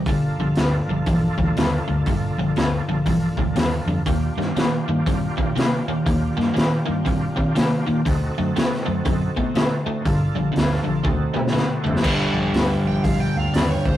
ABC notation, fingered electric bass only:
X:1
M:4/4
L:1/8
Q:"Swing" 1/4=120
K:Gm
V:1 name="Fingered electric bass" clef=bass
G,,, B,,, D,, B,,, B,,, D,, E,, D,, | G,,, B,,, D,, B,,, B,,, D,, E,, F,, | E,, G,, B,, G,, G,, B,, C, B,, | E,, G,, B,, G,, G,, B,, C, B,, |
D,, ^F,, A,, F,, F,, A,, B,, A,, | G,,, B,,, D,, B,,, D,, A,, B,, ^F,,, | G,,, B,,, D,, B,,, B,,, D,, E,, D,, |]